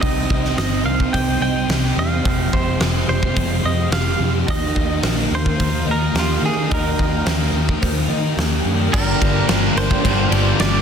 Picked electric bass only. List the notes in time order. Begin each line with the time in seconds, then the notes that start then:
0.02 C2
0.30 C2
0.57 G1
0.84 C2
1.14 C2
1.40 C2
1.68 C2
1.97 E2
2.25 F1
2.53 F1
2.81 F1
3.08 F1
3.36 F1
3.64 F2
3.91 F1
4.19 F2
4.49 D#2
4.76 D#2
5.03 A#1
5.31 D#2
5.60 D#2
5.86 D#2
6.14 D#2
6.42 D#3
6.72 D#2
6.99 D#2
7.25 D#2
7.52 D#2
7.83 D#2
8.09 D#3
8.37 D#2
8.65 F#2
8.94 G1
9.21 G1
9.47 G1
9.76 G1
10.05 G1
10.31 G1
10.59 G1